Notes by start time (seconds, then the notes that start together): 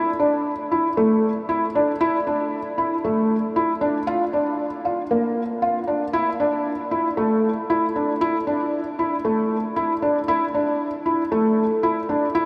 0.19 D4
0.71 E4
0.97 A3
1.49 E4
1.75 D4
2.01 E4
2.27 D4
2.78 E4
3.04 A3
3.56 E4
3.81 D4
4.07 F4
4.33 D4
4.85 F4
5.11 A#3
5.62 F4
5.87 D4
6.13 E4
6.40 D4
6.91 E4
7.17 A3
7.70 E4
7.96 D4
8.21 E4
8.47 D4
8.99 E4
9.25 A3
9.76 E4
10.02 D4
10.28 E4
10.54 D4
11.06 E4
11.32 A3
11.83 E4
12.09 D4
12.35 E4